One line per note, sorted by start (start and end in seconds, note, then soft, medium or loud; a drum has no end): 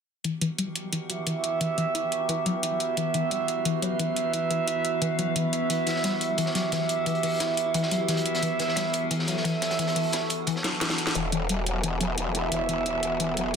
0.24 0.37 E3 medium
0.24 11.11 E3 medium
0.24 11.11 B3 medium
0.24 11.11 F#4 medium
0.24 2.96 G4 medium
0.24 closed hi-hat medium
0.41 0.50 E3 medium
0.41 closed hi-hat medium
0.58 0.67 G3 medium
0.58 closed hi-hat medium
0.76 closed hi-hat medium
0.93 1.05 E3 medium
0.93 closed hi-hat medium
1.10 1.18 F#3 medium
1.10 2.44 E4 loud
1.10 2.44 B4 medium
1.10 2.44 E5 loud
1.10 closed hi-hat medium
1.27 1.35 E3 medium
1.27 closed hi-hat medium
1.44 closed hi-hat medium
1.61 1.73 E3 medium
1.61 closed hi-hat medium
1.78 1.86 E3 medium
1.78 closed hi-hat medium
1.95 2.03 E4 medium
1.95 closed hi-hat medium
2.12 closed hi-hat medium
2.29 2.37 E3 loud
2.29 closed hi-hat medium
2.46 2.54 F#3 medium
2.46 3.80 E4 loud
2.46 3.80 B4 medium
2.46 3.80 E5 loud
2.46 closed hi-hat medium
2.63 2.71 E3 medium
2.63 closed hi-hat medium
2.80 closed hi-hat medium
2.97 3.09 E3 medium
2.97 5.69 B4 medium
2.97 closed hi-hat medium
3.14 3.22 E3 medium
3.14 closed hi-hat medium
3.31 3.39 G3 medium
3.31 closed hi-hat medium
3.48 closed hi-hat medium
3.65 3.77 E3 medium
3.65 closed hi-hat medium
3.82 3.90 F#3 medium
3.82 5.17 E4 loud
3.82 5.17 B4 loud
3.82 5.17 E5 loud
3.82 closed hi-hat medium
3.99 4.08 E3 medium
3.99 closed hi-hat medium
4.16 closed hi-hat medium
4.33 4.46 E3 medium
4.33 closed hi-hat medium
4.51 4.59 E3 medium
4.51 closed hi-hat medium
4.68 4.76 E4 medium
4.68 closed hi-hat medium
4.85 closed hi-hat medium
5.02 5.10 E3 loud
5.02 closed hi-hat medium
5.19 5.27 F#3 medium
5.19 6.53 E4 loud
5.19 6.53 B4 loud
5.19 6.53 E5 loud
5.19 closed hi-hat medium
5.36 5.44 E3 medium
5.36 closed hi-hat medium
5.53 closed hi-hat medium
5.70 5.82 E3 medium
5.70 8.42 G4 medium
5.70 closed hi-hat medium
5.87 5.95 E3 medium
5.87 snare medium
5.87 closed hi-hat medium
5.96 snare soft
6.04 6.12 G3 medium
6.04 snare loud
6.04 closed hi-hat medium
6.21 closed hi-hat medium
6.38 6.50 E3 medium
6.38 closed hi-hat medium
6.46 snare medium
6.55 6.63 F#3 medium
6.55 7.89 E4 loud
6.55 7.89 B4 loud
6.55 7.89 E5 loud
6.55 snare medium
6.55 closed hi-hat medium
6.72 6.80 E3 medium
6.72 snare loud
6.72 closed hi-hat medium
6.89 closed hi-hat medium
7.06 7.18 E3 medium
7.06 closed hi-hat medium
7.15 closed hi-hat soft
7.23 7.31 E3 medium
7.23 closed hi-hat medium
7.23 open hi-hat medium
7.40 7.48 E4 medium
7.40 snare loud
7.40 closed hi-hat medium
7.57 closed hi-hat medium
7.74 7.83 E3 loud
7.74 closed hi-hat medium
7.83 snare medium
7.91 8.00 F#3 medium
7.91 9.11 E4 loud
7.91 9.11 B4 loud
7.91 9.11 E5 loud
7.91 closed hi-hat medium
8.08 8.17 E3 medium
8.08 snare soft
8.08 closed hi-hat medium
8.17 closed hi-hat medium
8.26 closed hi-hat medium
8.35 snare soft
8.35 closed hi-hat medium
8.42 8.55 E3 medium
8.42 11.14 A4 medium
8.42 closed hi-hat medium
8.59 8.68 E3 medium
8.59 snare soft
8.59 closed hi-hat medium
8.68 snare soft
8.76 8.85 G3 medium
8.76 snare loud
8.76 closed hi-hat medium
8.93 closed hi-hat medium
9.11 9.23 E3 medium
9.11 closed hi-hat medium
9.19 snare soft
9.28 9.36 F#3 medium
9.28 10.62 E4 loud
9.28 10.62 B4 loud
9.28 10.62 E5 loud
9.28 snare soft
9.28 closed hi-hat medium
9.37 snare soft
9.44 9.53 E3 medium
9.44 snare loud
9.44 closed hi-hat medium
9.62 snare loud
9.62 closed hi-hat medium
9.71 snare medium
9.71 closed hi-hat medium
9.79 9.91 E3 medium
9.79 snare loud
9.79 closed hi-hat loud
9.79 closed hi-hat medium
9.88 snare loud
9.88 closed hi-hat medium
9.96 10.04 E3 medium
9.96 closed hi-hat medium
9.96 open hi-hat medium
10.13 10.21 E4 medium
10.13 snare loud
10.13 closed hi-hat medium
10.13 closed hi-hat loud
10.30 closed hi-hat medium
10.47 10.55 E3 loud
10.47 closed hi-hat medium
10.47 closed hi-hat loud
10.56 snare medium
10.64 10.72 F#3 medium
10.64 snare medium
10.64 closed hi-hat medium
10.81 10.89 E3 medium
10.81 snare medium
10.81 closed hi-hat medium
10.89 snare loud
10.89 snare medium
10.89 closed hi-hat medium
10.98 closed hi-hat medium
11.07 snare medium
11.07 closed hi-hat medium
11.15 12.50 E1 loud
11.15 13.56 E3 medium
11.15 11.27 E3 medium
11.15 13.56 B3 medium
11.15 13.56 F#4 medium
11.15 13.56 G4 medium
11.15 closed hi-hat loud
11.32 11.41 E3 medium
11.32 closed hi-hat medium
11.49 11.58 G3 medium
11.49 closed hi-hat medium
11.66 closed hi-hat medium
11.84 11.96 E3 medium
11.84 closed hi-hat medium
12.01 12.09 F#3 medium
12.01 13.35 E4 loud
12.01 13.35 B4 loud
12.01 13.35 E5 loud
12.01 closed hi-hat medium
12.18 12.26 E3 medium
12.18 closed hi-hat loud
12.35 closed hi-hat medium
12.52 13.56 E1 loud
12.52 12.64 E3 medium
12.52 closed hi-hat medium
12.69 12.77 E3 medium
12.69 closed hi-hat medium
12.86 12.94 E4 medium
12.86 closed hi-hat medium
13.03 closed hi-hat medium
13.20 13.28 E3 loud
13.20 closed hi-hat medium
13.37 13.45 F#3 medium
13.37 13.56 E4 loud
13.37 13.56 B4 loud
13.37 13.56 E5 loud
13.37 closed hi-hat medium